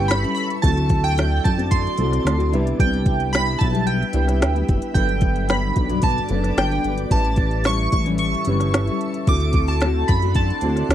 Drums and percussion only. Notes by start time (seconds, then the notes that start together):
0.11 snare, closed hi-hat
0.24 closed hi-hat
0.37 closed hi-hat
0.50 closed hi-hat
0.64 kick, closed hi-hat
0.77 closed hi-hat
0.89 kick, closed hi-hat
1.04 closed hi-hat
1.18 snare, closed hi-hat
1.45 kick, closed hi-hat
1.59 closed hi-hat
1.71 kick, closed hi-hat
1.87 closed hi-hat
1.97 closed hi-hat
2.13 snare, closed hi-hat
2.27 snare, closed hi-hat
2.40 closed hi-hat
2.53 closed hi-hat
2.67 closed hi-hat
2.80 kick, closed hi-hat
2.94 closed hi-hat
3.06 kick, closed hi-hat
3.20 closed hi-hat
3.34 snare, closed hi-hat
3.47 closed hi-hat
3.61 kick, closed hi-hat
3.75 closed hi-hat
3.87 closed hi-hat
4.02 closed hi-hat
4.13 closed hi-hat
4.28 snare, closed hi-hat
4.42 snare, closed hi-hat
4.56 closed hi-hat
4.68 kick, closed hi-hat
4.82 closed hi-hat
4.95 kick, closed hi-hat
5.09 closed hi-hat
5.21 kick, closed hi-hat
5.36 closed hi-hat
5.49 snare, closed hi-hat
5.76 kick, closed hi-hat
5.89 closed hi-hat
6.02 kick, closed hi-hat
6.18 closed hi-hat
6.29 closed hi-hat
6.44 snare, closed hi-hat
6.58 snare, closed hi-hat
6.72 closed hi-hat
6.84 closed hi-hat
6.98 closed hi-hat
7.11 kick, closed hi-hat
7.25 closed hi-hat
7.36 kick, closed hi-hat
7.51 closed hi-hat
7.64 snare, closed hi-hat
7.92 kick, closed hi-hat
8.06 closed hi-hat
8.18 closed hi-hat
8.34 closed hi-hat
8.45 closed hi-hat
8.60 snare, closed hi-hat
8.74 snare, closed hi-hat
8.87 closed hi-hat
9.01 closed hi-hat
9.14 closed hi-hat
9.27 kick, closed hi-hat
9.40 closed hi-hat
9.53 kick, closed hi-hat
9.68 closed hi-hat
9.81 snare, closed hi-hat
10.08 kick, closed hi-hat
10.22 closed hi-hat
10.35 kick, closed hi-hat
10.50 closed hi-hat
10.61 closed hi-hat
10.76 snare, closed hi-hat
10.90 snare, closed hi-hat